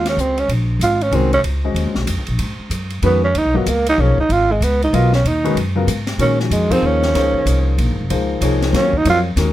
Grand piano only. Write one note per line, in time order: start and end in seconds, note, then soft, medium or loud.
0.00 0.42 G#3 medium
0.00 0.42 C#4 soft
0.00 0.42 F#4 soft
0.00 0.43 C5 medium
0.00 0.43 D#5 medium
1.12 1.30 D#3 medium
1.12 1.30 G#3 medium
1.12 1.30 C#4 medium
1.12 1.30 F#4 medium
1.12 1.31 A#4 medium
1.64 2.05 G#3 medium
1.64 2.06 C#4 soft
1.64 2.06 F#4 soft
1.64 2.06 C5 soft
1.64 2.06 D#5 medium
3.03 3.21 D#3 medium
3.03 3.21 G#3 medium
3.03 3.21 C#4 medium
3.03 3.21 F#4 medium
3.03 3.21 B4 medium
3.54 3.65 F#3 medium
3.54 3.65 B3 medium
3.54 3.65 F4 medium
3.54 3.65 A#4 medium
3.54 3.65 D#5 medium
3.99 4.16 F3 medium
3.99 4.16 A#3 medium
3.99 4.16 D#4 medium
3.99 4.16 G#4 medium
3.99 4.16 C#5 medium
4.93 5.11 F#3 medium
4.93 5.11 B3 medium
4.93 5.11 F4 medium
4.93 5.11 A#4 medium
4.93 5.11 D#5 medium
5.44 5.55 D#3 medium
5.44 5.55 G#3 medium
5.44 5.55 C#4 medium
5.44 5.55 F#4 medium
5.44 5.56 B4 medium
5.75 5.87 C#3 medium
5.75 5.87 F#3 medium
5.75 5.87 B3 medium
5.75 5.87 F4 medium
5.75 5.87 A#4 medium
6.19 6.67 D#3 medium
6.19 6.67 G#3 soft
6.19 6.67 C#4 medium
6.19 6.67 F#4 medium
6.19 6.67 A#4 medium
6.70 7.12 F3 medium
6.70 7.12 A#3 medium
6.70 7.12 D#4 medium
6.70 7.12 G#4 medium
6.70 7.12 C5 medium
7.15 8.03 F3 soft
7.15 8.03 A#3 soft
7.15 8.03 D#4 soft
7.15 8.03 G#4 soft
7.15 8.03 C5 medium
8.10 8.40 F3 medium
8.10 8.40 A#3 soft
8.10 8.40 D#4 soft
8.10 8.41 G#4 soft
8.10 8.41 C5 medium
8.41 8.72 F3 medium
8.41 8.72 A#3 medium
8.41 8.72 D#4 medium
8.41 8.72 G#4 medium
8.41 8.72 C#5 medium
8.73 8.91 F#3 medium
8.73 8.91 C4 medium
8.73 8.91 F4 medium
8.73 8.91 A#4 medium
8.73 8.91 C#5 medium
9.06 9.23 F#3 medium
9.06 9.23 C4 soft
9.06 9.24 F4 soft
9.06 9.23 A#4 soft
9.06 9.23 C#5 medium
9.37 9.53 D#3 medium
9.37 9.53 G#3 medium
9.37 9.53 C#4 medium
9.37 9.53 F#4 medium
9.37 9.53 A#4 medium